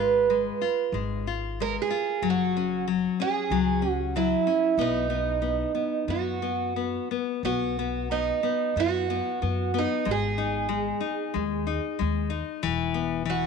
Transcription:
0.00 0.48 G#1 medium
0.00 0.29 G#3 medium
0.00 0.29 F4 soft
0.00 0.93 B4 medium
0.30 0.61 G#3 medium
0.61 0.93 F4 soft
0.92 1.77 G#1 medium
0.92 1.26 G#3 soft
1.27 1.58 F4 soft
1.60 1.91 G#3 soft
1.60 1.75 A#4 medium
1.82 2.28 G#4 medium
1.91 2.22 F4 soft
2.22 3.05 F#1 medium
2.22 2.86 F#3 medium
2.30 2.86 F#4 medium
2.57 2.87 C#4 soft
2.88 3.18 F#3 medium
3.20 3.50 C#4 soft
3.20 3.90 G#4 medium
3.50 4.33 C#2 medium
3.50 3.82 F#3 medium
3.82 4.13 C#4 soft
3.90 4.18 F#4 medium
4.16 4.46 F#3 soft
4.16 4.81 E4 medium
4.47 4.77 C#4 soft
4.78 5.62 B1 medium
4.78 5.09 B3 medium
4.78 6.13 D#4 medium
5.10 5.41 B3 soft
5.42 5.74 B3 soft
5.75 6.06 B3 soft
6.08 6.97 F#2 medium
6.08 6.40 B3 soft
6.08 7.08 F#4 medium
6.42 6.75 B3 soft
6.76 7.10 B3 soft
7.11 7.43 B3 soft
7.43 8.30 B1 medium
7.43 7.78 B3 medium
7.43 8.13 F#4 medium
7.79 8.10 B3 soft
8.11 8.42 B3 soft
8.11 8.79 D#4 medium
8.43 8.76 B3 soft
8.76 9.19 F#2 medium
8.76 9.09 B3 medium
8.76 9.79 F#4 medium
9.10 9.41 B3 soft
9.42 9.84 F#2 medium
9.42 9.73 B3 soft
9.74 10.05 B3 soft
9.79 10.10 D#4 medium
10.05 10.90 G#1 medium
10.05 10.67 G#3 medium
10.11 12.29 G#4 medium
10.38 10.69 D#4 soft
10.69 11.01 G#3 medium
11.01 11.33 D#4 soft
11.34 11.77 D#2 medium
11.34 11.66 G#3 medium
11.67 11.98 D#4 soft
11.99 12.41 D#2 medium
11.99 12.30 G#3 soft
12.30 12.61 D#4 medium
12.63 13.46 E1 medium
12.63 13.24 E3 medium
12.94 13.25 B3 soft
13.26 13.47 E3 medium
13.30 13.47 F#4 medium

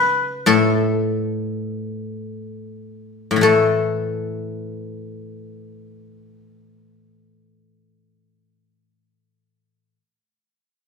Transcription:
0.00 0.48 C#3 medium
0.00 1.91 B4 loud
0.00 0.12 C#5 loud
0.46 3.30 A2 medium
0.46 2.66 A4 medium
3.31 9.94 A2 medium
3.36 9.99 E3 medium
3.41 9.07 A3 soft
3.41 6.46 A4 medium

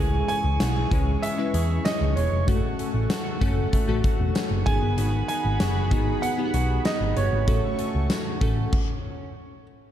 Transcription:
0.00 0.21 C#2 loud
0.00 2.48 E3 medium
0.00 0.85 G#3 medium
0.00 0.29 C#4 medium
0.00 0.85 C#4 medium
0.00 0.85 E4 medium
0.00 2.45 E4 medium
0.00 0.60 G#4 medium
0.00 0.85 G#4 medium
0.00 2.45 G#4 medium
0.00 0.27 G#5 loud
0.00 4.63 C#6 medium
0.28 0.92 C#4 medium
0.28 1.25 G#5 loud
0.28 closed hi-hat medium
0.44 0.56 C#2 loud
0.60 0.84 B1 loud
0.60 0.76 F#4 medium
0.60 snare loud
0.60 closed hi-hat loud
0.60 tambourine medium
0.76 1.53 G#4 medium
0.91 1.15 C#2 medium
0.91 1.35 G#3 medium
0.91 1.35 C#4 medium
0.91 1.85 C#4 medium
0.91 1.35 E4 medium
0.91 1.36 B4 medium
0.91 kick loud
0.91 closed hi-hat medium
1.22 2.16 G#3 medium
1.22 1.87 E5 medium
1.22 closed hi-hat loud
1.38 2.40 G#3 medium
1.38 2.40 C#4 medium
1.38 2.41 E4 medium
1.38 2.41 B4 medium
1.54 1.77 E2 medium
1.54 2.48 G#4 medium
1.54 closed hi-hat medium
1.85 2.79 C#4 medium
1.85 2.17 D#5 medium
1.85 snare loud
1.85 closed hi-hat medium
1.85 tambourine medium
2.01 2.13 C#2 medium
2.16 2.28 E1 loud
2.16 2.48 G#3 medium
2.16 3.06 C#5 medium
2.16 closed hi-hat medium
2.32 2.44 F1 medium
2.47 2.60 F#1 loud
2.47 3.35 A3 medium
2.47 3.72 A3 medium
2.47 3.35 C#4 medium
2.47 3.35 F#4 medium
2.47 3.10 F#4 medium
2.47 3.36 A4 medium
2.47 4.65 A4 medium
2.47 4.65 F#5 medium
2.47 kick loud
2.47 closed hi-hat medium
2.79 3.41 C#4 medium
2.79 closed hi-hat medium
2.94 3.06 A1 medium
3.10 4.04 F#4 medium
3.10 snare loud
3.10 closed hi-hat loud
3.10 tambourine medium
3.41 3.65 F#1 medium
3.41 3.85 A3 medium
3.41 3.85 C#4 medium
3.41 4.34 C#4 medium
3.41 3.85 F#4 medium
3.41 3.85 A4 loud
3.41 kick loud
3.41 closed hi-hat medium
3.73 4.73 A3 medium
3.73 kick medium
3.73 closed hi-hat loud
3.88 4.00 A1 loud
3.88 4.66 A3 medium
3.88 4.66 C#4 medium
3.88 4.65 F#4 medium
3.88 4.67 A4 loud
4.04 4.98 F#4 medium
4.04 kick medium
4.04 closed hi-hat medium
4.19 4.31 E1 medium
4.35 4.73 C#4 medium
4.35 snare loud
4.35 closed hi-hat medium
4.35 tambourine medium
4.51 4.63 F#1 medium
4.66 4.78 G#1 loud
4.66 4.97 D#3 medium
4.66 5.83 B3 medium
4.66 5.83 D#4 medium
4.66 5.83 F#4 medium
4.66 7.45 G#4 medium
4.66 5.83 G#4 medium
4.66 8.69 F#5 medium
4.66 5.25 G#5 loud
4.66 7.45 B5 medium
4.66 kick loud
4.66 closed hi-hat medium
4.82 4.94 G1 loud
4.98 5.21 G#1 loud
4.98 7.48 D#3 medium
4.98 5.60 F#4 medium
4.98 closed hi-hat medium
5.28 5.91 D#4 medium
5.28 6.25 G#5 loud
5.28 closed hi-hat medium
5.45 5.56 G#1 loud
5.60 5.91 F#1 loud
5.60 6.54 F#4 medium
5.60 snare loud
5.60 closed hi-hat loud
5.60 tambourine medium
5.91 6.15 G#1 medium
5.91 6.35 B3 medium
5.91 6.35 D#4 medium
5.91 6.84 D#4 medium
5.91 6.35 F#4 medium
5.91 6.36 G#4 medium
5.91 kick loud
5.91 closed hi-hat medium
6.22 7.16 B3 medium
6.22 6.87 F#5 loud
6.22 closed hi-hat medium
6.38 7.40 B3 medium
6.38 7.40 D#4 medium
6.38 7.41 F#4 medium
6.38 6.45 G4 medium
6.45 7.44 G#4 medium
6.54 6.78 B1 loud
6.54 7.48 F#4 medium
6.54 closed hi-hat medium
6.85 7.54 D#4 medium
6.85 7.18 D#5 loud
6.85 snare loud
6.85 closed hi-hat medium
6.85 tambourine medium
7.01 7.13 G#1 medium
7.17 7.28 G1 loud
7.17 7.47 B3 medium
7.17 9.63 C#5 medium
7.17 closed hi-hat medium
7.32 7.44 G#1 medium
7.47 7.60 A1 loud
7.47 8.35 A3 medium
7.47 8.79 A3 medium
7.47 8.35 C#4 medium
7.47 8.35 F#4 medium
7.47 8.09 F#4 medium
7.47 8.71 A4 medium
7.47 8.36 A4 medium
7.47 8.71 C#6 medium
7.47 kick loud
7.47 closed hi-hat medium
7.79 8.41 C#4 medium
7.79 closed hi-hat medium
7.95 8.07 C#2 medium
8.10 8.79 F#4 medium
8.10 snare loud
8.10 closed hi-hat loud
8.10 tambourine medium
8.41 8.65 A1 medium
8.41 8.72 A3 medium
8.41 8.73 C#4 medium
8.41 9.29 C#4 medium
8.41 8.73 F#4 medium
8.41 8.73 A4 medium
8.41 kick loud
8.41 closed hi-hat medium
8.73 kick loud
8.73 crash medium

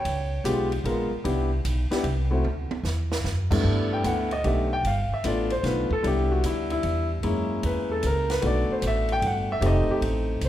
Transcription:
0.00 0.43 C#5 medium
0.00 0.40 G5 medium
0.05 0.44 C#2 medium
0.05 ride medium
0.44 0.83 B1 medium
0.44 0.69 G#3 medium
0.44 0.69 B3 medium
0.44 0.69 F4 medium
0.44 0.69 G4 medium
0.44 hi-hat pedal soft
0.44 ride medium
0.72 ride soft
0.84 1.09 A#1 medium
0.84 1.09 G#3 medium
0.84 1.09 B3 medium
0.84 1.09 F4 medium
0.84 1.09 A#4 medium
0.84 ride medium
1.11 muted upright bass stroke soft
1.24 1.64 C2 medium
1.24 1.49 B3 medium
1.24 1.49 D4 medium
1.24 1.49 E4 medium
1.24 1.49 G4 medium
1.24 ride medium
1.65 1.90 B1 medium
1.65 hi-hat pedal medium
1.65 ride medium
1.91 2.03 B3 medium
1.91 2.03 D4 medium
1.91 2.04 E4 medium
1.91 2.04 G4 medium
1.91 muted upright bass stroke soft
1.91 snare medium
1.91 ride soft
2.04 2.43 C2 medium
2.04 ride soft
2.31 2.43 A3 medium
2.31 2.43 C4 medium
2.31 2.43 E4 medium
2.31 2.43 F#4 medium
2.44 2.69 D2 medium
2.44 high tom soft
2.71 muted upright bass stroke soft
2.71 high tom medium
2.83 3.23 E2 medium
2.83 snare medium
2.83 hi-hat pedal medium
3.12 snare medium
3.24 3.63 F#2 medium
3.24 snare soft
3.51 4.01 G2 medium
3.51 4.01 A3 medium
3.51 4.01 B3 medium
3.51 4.02 D4 medium
3.51 4.02 E4 medium
3.51 kick medium
3.51 crash medium
3.64 4.03 G2 medium
3.93 4.05 G5 medium
4.04 4.43 D2 medium
4.04 4.28 A3 medium
4.04 4.28 B3 medium
4.04 4.28 D4 medium
4.04 4.28 E4 medium
4.04 4.31 F#5 medium
4.04 hi-hat pedal medium
4.04 ride medium
4.31 4.44 D#5 medium
4.31 ride soft
4.43 4.83 B1 medium
4.43 4.68 A3 soft
4.43 4.68 B3 soft
4.43 4.68 D4 soft
4.43 4.68 G4 medium
4.43 4.72 E5 medium
4.43 ride soft
4.73 4.85 G5 loud
4.83 5.08 G1 medium
4.83 5.11 F5 medium
4.83 ride medium
5.11 5.25 E5 medium
5.11 muted upright bass stroke soft
5.24 5.63 A1 medium
5.24 5.48 A3 medium
5.24 5.48 B3 medium
5.24 5.48 D4 medium
5.24 5.49 F4 medium
5.24 5.51 D5 medium
5.24 hi-hat pedal medium
5.24 ride medium
5.50 5.64 C5 medium
5.50 ride soft
5.63 5.88 B1 medium
5.63 5.88 A3 soft
5.63 5.88 B3 soft
5.63 5.88 D4 soft
5.63 5.88 F4 medium
5.63 5.91 B4 medium
5.63 snare soft
5.63 ride soft
5.91 6.04 A4 medium
5.91 muted upright bass stroke soft
5.91 kick medium
6.03 6.42 C2 medium
6.03 7.15 G3 medium
6.03 7.15 B3 medium
6.03 7.15 D4 medium
6.03 6.45 E4 medium
6.03 ride medium
6.07 6.31 G4 medium
6.32 6.44 F#4 medium
6.44 6.82 D2 medium
6.44 6.70 E4 medium
6.44 hi-hat pedal medium
6.44 ride medium
6.70 7.08 E4 medium
6.70 ride soft
6.83 7.22 E2 medium
6.83 ride medium
7.23 7.62 F#2 medium
7.23 8.35 G#3 medium
7.23 8.35 A#3 medium
7.23 8.35 C#4 medium
7.23 8.35 E4 medium
7.23 ride medium
7.63 8.02 E2 medium
7.63 7.90 B4 medium
7.63 ride medium
7.92 8.03 A4 medium
8.03 8.42 C#2 medium
8.03 hi-hat pedal soft
8.03 ride medium
8.07 8.31 A#4 medium
8.30 8.43 B4 medium
8.30 snare medium
8.30 ride medium
8.42 8.68 B1 medium
8.42 9.54 A3 medium
8.42 9.54 B3 medium
8.42 9.54 D4 medium
8.42 9.54 F#4 medium
8.42 ride medium
8.47 8.71 D5 medium
8.69 8.83 C5 medium
8.69 muted upright bass stroke soft
8.82 9.21 A1 medium
8.82 hi-hat pedal medium
8.82 ride medium
8.87 9.11 E5 medium
9.08 9.24 G5 loud
9.08 ride soft
9.22 9.60 G1 medium
9.22 ride medium
9.26 9.50 F#5 medium
9.52 9.63 E5 medium
9.61 9.86 F1 medium
9.61 10.49 A3 medium
9.61 10.49 C4 medium
9.61 10.49 D#4 medium
9.61 9.90 G4 medium
9.61 ride medium
9.66 9.90 D#5 medium
9.87 muted upright bass stroke soft
9.91 9.98 G4 medium
10.01 10.40 A1 medium
10.01 ride medium
10.41 10.49 C2 medium
10.41 hi-hat pedal medium
10.41 ride medium
10.45 10.49 C5 medium

